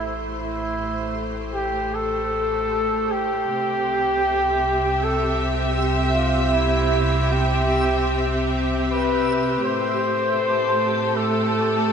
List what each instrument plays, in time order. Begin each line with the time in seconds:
Already playing: sub bass A1, string section A2 A3 G4 C5, flugelhorn E4
0.41 flugelhorn E4
1.54 flugelhorn G4
1.95 flugelhorn A4
3.11 flugelhorn G4
3.44 sub bass C2, synth texture E5
3.48 string section C3
3.54 string section C4
4.07 string section E5
5.04 flugelhorn A4
5.78 flugelhorn G4
6.14 flugelhorn F4
6.53 flugelhorn E4
7.32 flugelhorn G4
8.89 flugelhorn B4
9.62 string section A2, flugelhorn C5, synth texture A5
9.86 string section A3
10.33 string section A4
11.16 flugelhorn A4